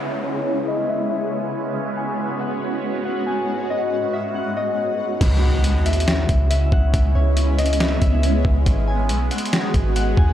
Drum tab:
CC |------------------------|------------------------|------------------------|x-----------------------|
HH |------------------------|------------------------|------------------------|x-----x--xxxx--x--x-----|
SD |------------------------|------------------------|------------------------|------------o-----------|
BD |------------------------|------------------------|------------------------|o--------------o-----o--|

CC |------------------------|------------------------|
HH |x-----x--xxxx--x--x-----|x-----x--xxxx--x--x-----|
SD |------------o-----------|------------o-----------|
BD |o--------------o-----o--|o--------------o-----o--|